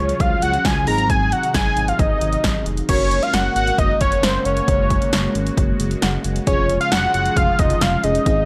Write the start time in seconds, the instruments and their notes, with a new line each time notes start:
Already playing: analog synth bass C#2, analog synth pad C#3 F3 F#3 F4, fm electric piano C#4 F4 G#4, analog synth lead C#5
0.09 closed hi-hat
0.20 analog synth bass C#2, analog synth lead F5, kick, closed hi-hat
0.42 analog synth bass C#2, analog synth lead F#5, closed hi-hat
0.54 closed hi-hat
0.65 analog synth bass C#2, analog synth lead G#5, kick, snare, closed hi-hat
0.87 analog synth bass G#1, analog synth pad C3 D#3 D#4, fm electric piano C4 D#4 G#4, analog synth lead A#5, open hi-hat
0.98 closed hi-hat
1.10 analog synth lead G#5, kick, closed hi-hat
1.32 analog synth lead F#5, closed hi-hat
1.43 closed hi-hat
1.54 analog synth bass G#1, analog synth lead G#5, kick, snare, closed hi-hat
1.77 analog synth bass G#1, closed hi-hat
1.88 analog synth lead F5, closed hi-hat
1.99 analog synth bass G#1, analog synth lead D#5, kick, closed hi-hat
2.21 analog synth bass G#1, closed hi-hat
2.33 closed hi-hat
2.44 analog synth bass G#1, kick, snare, closed hi-hat
2.66 analog synth bass F1, closed hi-hat
2.77 closed hi-hat
2.89 analog synth bass F#1, analog synth pad C#3 G#3 A#3 F#4, fm electric piano C#4 F#4 A#4, analog synth lead C#5, kick, closed hi-hat, crash
3.11 closed hi-hat
3.23 analog synth lead F5, closed hi-hat
3.34 analog synth bass F#1, analog synth lead F#5, snare, closed hi-hat
3.56 analog synth bass G#1, analog synth lead F#5, closed hi-hat
3.67 closed hi-hat
3.78 analog synth bass F#1, analog synth lead D#5, kick, closed hi-hat
4.01 analog synth bass F#1, analog synth lead C#5, kick, closed hi-hat
4.12 closed hi-hat
4.23 analog synth bass F#1, analog synth lead C5, snare, closed hi-hat
4.45 analog synth bass F#1, analog synth lead C#5, closed hi-hat
4.57 closed hi-hat
4.68 analog synth bass F#1, kick, closed hi-hat
4.90 kick, closed hi-hat
5.02 closed hi-hat
5.13 analog synth bass F#1, snare, closed hi-hat
5.35 analog synth bass G#1, closed hi-hat
5.47 closed hi-hat
5.57 analog synth bass F#1, kick, closed hi-hat
5.80 analog synth bass F#1, closed hi-hat
5.91 closed hi-hat
6.02 analog synth bass F#1, fm electric piano F#5, snare, closed hi-hat
6.24 analog synth bass F#1, closed hi-hat
6.36 closed hi-hat
6.47 analog synth bass F1, analog synth pad F3 F4, fm electric piano C#4 F4 G#4, analog synth lead C#5, kick, closed hi-hat
6.69 closed hi-hat
6.81 analog synth lead F5, closed hi-hat
6.92 analog synth bass F1, analog synth lead F#5, snare, closed hi-hat
7.14 analog synth bass F#1, analog synth lead F#5, closed hi-hat
7.26 closed hi-hat
7.36 analog synth bass F1, analog synth lead F5, kick, closed hi-hat
7.59 analog synth bass F1, analog synth lead D#5, kick, closed hi-hat
7.70 closed hi-hat
7.81 analog synth bass F1, analog synth lead F5, snare, closed hi-hat
8.04 analog synth bass F1, fm electric piano C#4 F4 G#4, analog synth lead D#5, closed hi-hat
8.15 closed hi-hat
8.26 analog synth bass G#1, analog synth pad C3 D#3 G#3 D#4, fm electric piano C4 D#4 G#4, kick, closed hi-hat